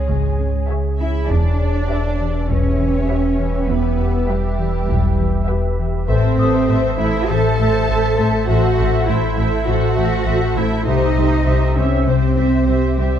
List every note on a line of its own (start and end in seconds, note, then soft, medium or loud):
0.00 1.31 C#2 medium
0.00 0.69 G#3 medium
0.00 0.69 G#4 soft
0.00 1.25 G#4 soft
0.00 1.25 C#5 medium
0.00 1.25 G#5 medium
0.08 0.56 G#1 soft
0.08 0.26 C#3 medium
0.39 0.57 C#4 soft
0.68 0.88 C#3 soft
0.68 1.14 G#4 soft
0.68 1.14 C#5 soft
0.68 1.13 E5 soft
0.68 1.14 G#5 soft
0.99 1.17 C#4 soft
0.99 1.27 E4 medium
0.99 1.27 E5 medium
1.28 6.10 E1 medium
1.28 1.48 E2 medium
1.28 1.77 E2 soft
1.28 2.50 D4 medium
1.28 6.09 G4 medium
1.28 6.08 B4 medium
1.28 2.49 D5 medium
1.28 6.07 E5 medium
1.59 1.77 E2 soft
1.89 2.07 E2 soft
1.89 2.34 G4 soft
1.89 2.34 B4 soft
1.89 2.34 E5 soft
2.20 2.38 E3 soft
2.49 2.97 B1 soft
2.49 2.67 E2 medium
2.49 3.67 C#4 medium
2.49 4.26 B4 soft
2.49 3.69 C#5 medium
2.79 2.97 E3 soft
3.08 3.27 E2 soft
3.08 3.54 G4 soft
3.08 3.54 B4 soft
3.08 3.54 E5 medium
3.39 3.57 E3 soft
3.68 4.16 E2 medium
3.68 3.87 E2 medium
3.68 4.29 B3 medium
3.68 4.29 B4 medium
3.99 4.17 E2 soft
4.27 4.47 E2 soft
4.27 5.49 G3 medium
4.27 5.48 G4 medium
4.27 4.73 G4 soft
4.27 4.74 B4 soft
4.27 4.74 E5 soft
4.59 4.77 E3 soft
4.89 5.36 B1 medium
4.89 5.07 E2 medium
5.18 5.36 E3 soft
5.47 5.67 E2 soft
5.47 5.93 G4 soft
5.47 5.93 B4 soft
5.47 5.92 E5 medium
5.80 5.97 E3 soft
6.07 6.16 A1 medium
6.07 10.87 A1 medium
6.07 6.26 A2 medium
6.07 6.95 C4 medium
6.07 10.87 A4 medium
6.07 6.38 A4 soft
6.07 6.94 C5 medium
6.07 10.87 C5 medium
6.07 6.38 C5 soft
6.07 7.86 C5 soft
6.07 10.83 E5 medium
6.07 6.38 E5 soft
6.38 6.46 A1 medium
6.38 6.57 A2 soft
6.38 6.67 A4 soft
6.38 6.67 C5 soft
6.38 6.66 E5 soft
6.38 8.16 D#6 medium
6.67 6.76 A1 medium
6.67 6.87 A2 soft
6.67 6.98 A4 soft
6.67 6.98 C5 soft
6.67 6.97 E5 medium
6.98 7.07 A1 soft
6.98 7.17 A3 soft
6.98 7.30 E4 medium
6.98 7.29 A4 soft
6.98 7.29 C5 soft
6.98 7.29 E5 soft
6.98 7.29 E5 medium
7.29 7.37 A1 medium
7.29 7.48 A2 medium
7.29 8.49 A4 medium
7.29 7.58 A4 medium
7.29 7.58 C5 medium
7.29 7.58 E5 medium
7.29 8.49 A5 medium
7.59 7.68 A1 medium
7.59 7.77 A3 soft
7.59 7.88 A4 soft
7.59 7.88 C5 soft
7.59 7.86 E5 medium
7.87 7.97 A1 medium
7.87 8.17 A4 soft
7.87 8.18 C5 soft
7.87 8.16 E5 medium
8.17 8.27 A1 medium
8.17 8.37 A3 soft
8.17 8.47 A4 soft
8.17 8.47 C5 soft
8.17 8.47 E5 soft
8.48 8.57 A1 medium
8.48 8.67 A2 medium
8.48 9.07 F#4 medium
8.48 8.78 A4 medium
8.48 8.78 C5 medium
8.48 8.76 E5 soft
8.48 9.07 F#5 medium
8.77 8.87 A1 medium
8.77 8.97 A2 soft
8.77 9.07 A4 medium
8.77 9.07 C5 soft
8.77 9.06 E5 soft
9.07 9.17 A1 medium
9.07 9.26 A2 soft
9.07 9.67 E4 medium
9.07 9.37 A4 soft
9.07 9.37 C5 medium
9.07 9.35 E5 medium
9.07 9.67 E5 medium
9.36 9.46 A1 soft
9.36 9.55 A3 soft
9.36 9.66 A4 soft
9.36 9.66 C5 soft
9.36 9.64 E5 soft
9.66 9.75 A1 medium
9.66 9.85 A2 medium
9.66 10.57 F#4 medium
9.66 9.96 A4 medium
9.66 9.96 C5 medium
9.66 9.95 E5 medium
9.66 10.57 F#5 medium
9.96 10.05 A1 medium
9.96 10.15 A3 soft
9.96 10.26 A4 soft
9.96 10.25 C5 soft
9.96 10.26 E5 medium
10.26 10.34 A1 medium
10.26 10.45 A2 soft
10.26 10.55 A4 soft
10.26 10.56 C5 soft
10.26 10.56 E5 medium
10.55 10.63 A1 medium
10.55 10.75 A3 soft
10.55 10.87 E4 medium
10.55 10.86 A4 soft
10.55 10.86 C5 soft
10.55 10.87 E5 medium
10.55 10.85 E5 soft
10.86 13.19 C2 medium
10.86 10.95 C2 soft
10.86 11.06 C3 medium
10.86 11.75 D#4 medium
10.86 13.19 G4 medium
10.86 11.16 G4 medium
10.86 11.14 C5 medium
10.86 11.16 C5 soft
10.86 11.75 D#5 medium
10.86 11.14 E5 soft
10.86 13.19 G5 medium
10.86 13.19 C6 medium
11.15 11.24 C2 soft
11.15 11.35 C3 soft
11.15 11.46 G4 soft
11.15 11.44 C5 soft
11.15 11.46 C5 soft
11.15 11.44 E5 soft
11.45 11.54 C2 medium
11.45 11.65 C3 soft
11.45 11.76 G4 soft
11.45 11.75 C5 soft
11.45 11.76 C5 soft
11.45 11.75 E5 soft
11.76 11.84 C2 soft
11.76 11.95 C4 soft
11.76 12.07 C#4 medium
11.76 12.06 G4 soft
11.76 12.05 C5 soft
11.76 12.06 C#5 soft
11.76 12.05 E5 soft
11.76 12.06 E5 soft
12.06 12.14 C2 soft
12.06 12.25 C3 medium
12.06 12.99 C4 medium
12.06 12.36 G4 soft
12.06 12.98 C5 medium
12.06 12.36 C5 soft
12.06 12.36 E5 soft
12.37 12.45 C2 soft
12.37 12.56 C4 soft
12.37 12.67 G4 soft
12.37 12.66 C5 soft
12.37 12.67 C5 soft
12.37 12.66 E5 soft
12.67 12.75 C2 soft
12.67 12.86 C3 soft
12.67 12.98 G4 soft
12.67 12.97 C5 soft
12.67 12.98 C5 soft
12.67 12.97 E5 soft
12.98 13.06 C2 soft
12.98 13.19 G3 medium
12.98 13.17 C4 soft
12.98 13.19 G4 soft
12.98 13.19 C5 soft
12.98 13.19 E5 soft